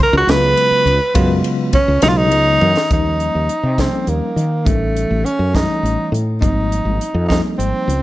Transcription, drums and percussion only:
0.00 ride
0.29 snare, ride
0.57 ride
0.87 ride
1.15 kick, ride
1.44 ride
1.73 kick, ride
2.02 snare, ride
2.32 ride
2.61 high tom
2.77 snare
2.91 kick, closed hi-hat
3.20 closed hi-hat
3.49 closed hi-hat
3.78 kick, snare, closed hi-hat
4.07 closed hi-hat
4.37 closed hi-hat
4.66 kick, closed hi-hat
4.97 closed hi-hat
5.26 closed hi-hat
5.55 kick, snare, closed hi-hat
5.86 closed hi-hat
6.14 closed hi-hat
6.42 kick, closed hi-hat
6.72 closed hi-hat
7.01 closed hi-hat
7.30 kick, snare, closed hi-hat
7.60 closed hi-hat
7.89 closed hi-hat

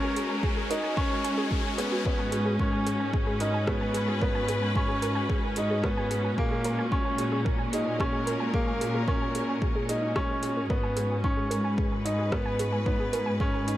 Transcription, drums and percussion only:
0.16 closed hi-hat
0.43 kick
0.71 closed hi-hat
0.97 kick
1.25 closed hi-hat
1.51 kick
1.78 closed hi-hat
2.05 kick
2.32 closed hi-hat
2.59 kick
2.87 closed hi-hat
3.13 kick
3.40 closed hi-hat
3.67 kick, cross-stick
3.94 closed hi-hat
4.21 kick
4.48 closed hi-hat
4.75 kick
5.02 closed hi-hat
5.30 kick
5.56 closed hi-hat
5.84 kick, cross-stick
6.11 closed hi-hat
6.38 kick
6.64 closed hi-hat
6.92 kick
7.18 closed hi-hat
7.46 kick
7.73 closed hi-hat
8.00 kick, cross-stick
8.27 closed hi-hat
8.54 kick
8.81 closed hi-hat
9.08 kick
9.35 closed hi-hat
9.62 kick
9.89 closed hi-hat
10.16 kick, cross-stick
10.43 closed hi-hat
10.70 kick
10.97 closed hi-hat
11.24 kick
11.51 closed hi-hat
11.78 kick
12.06 closed hi-hat
12.32 kick, cross-stick
12.59 closed hi-hat
12.86 kick
13.13 closed hi-hat
13.40 kick
13.68 closed hi-hat

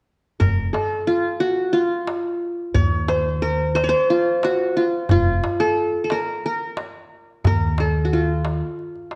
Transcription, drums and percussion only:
0.41 darbuka dum
0.74 darbuka tek
1.75 darbuka ka
2.08 darbuka tek
2.75 darbuka dum
3.09 darbuka tek
3.76 darbuka tek
4.10 darbuka ka
4.43 darbuka tek
5.09 darbuka dum
5.44 darbuka tek
6.10 darbuka tek
6.44 darbuka ka
6.77 darbuka tek
7.45 darbuka dum
7.78 darbuka tek
8.12 darbuka ka
8.44 darbuka tek
8.79 darbuka ka
8.95 darbuka ka
9.11 darbuka tek

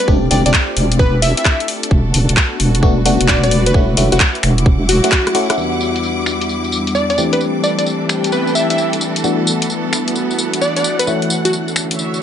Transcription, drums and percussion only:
0.08 kick
0.31 open hi-hat
0.46 closed hi-hat
0.54 kick, clap
0.77 open hi-hat
0.92 closed hi-hat
0.99 kick
1.22 open hi-hat
1.37 closed hi-hat
1.45 kick, clap
1.60 closed hi-hat
1.68 open hi-hat
1.83 closed hi-hat
1.91 kick
2.14 open hi-hat
2.29 closed hi-hat
2.37 kick, clap
2.60 open hi-hat
2.75 closed hi-hat
2.83 kick
3.06 open hi-hat
3.21 closed hi-hat
3.28 kick, clap
3.44 closed hi-hat
3.51 open hi-hat
3.66 closed hi-hat
3.74 kick
3.97 open hi-hat
4.12 closed hi-hat
4.20 kick, clap
4.35 closed hi-hat
4.43 finger snap, open hi-hat
4.58 closed hi-hat
4.66 kick
4.89 open hi-hat
5.04 closed hi-hat
5.12 kick, cross-stick, clap
5.27 cross-stick, closed hi-hat
5.35 open hi-hat
5.50 cross-stick, closed hi-hat
5.58 tambourine
5.81 tambourine
5.96 closed hi-hat, tambourine
6.03 tambourine
6.26 finger snap, tambourine
6.41 closed hi-hat, tambourine
6.49 tambourine
6.64 tambourine
6.72 tambourine
6.87 closed hi-hat, tambourine
6.95 tambourine
7.10 closed hi-hat, tambourine
7.18 tambourine
7.33 closed hi-hat, tambourine
7.41 tambourine
7.64 tambourine
7.79 closed hi-hat, tambourine
7.86 tambourine
8.09 finger snap, tambourine
8.24 closed hi-hat, tambourine
8.32 tambourine
8.47 tambourine
8.55 tambourine
8.70 closed hi-hat, tambourine
8.78 tambourine
8.93 closed hi-hat, tambourine
9.01 tambourine
9.16 closed hi-hat, tambourine
9.24 tambourine
9.47 tambourine
9.62 closed hi-hat, tambourine
9.70 tambourine
9.93 finger snap, tambourine
10.08 closed hi-hat, tambourine
10.16 tambourine
10.31 tambourine
10.38 tambourine
10.54 closed hi-hat, tambourine
10.61 tambourine
10.76 closed hi-hat, tambourine
10.84 tambourine
10.99 closed hi-hat, tambourine
11.07 tambourine
11.22 closed hi-hat
11.30 tambourine
11.45 closed hi-hat, tambourine
11.53 tambourine
11.68 tambourine
11.76 finger snap, tambourine
11.91 closed hi-hat, tambourine
11.99 tambourine
12.14 tambourine

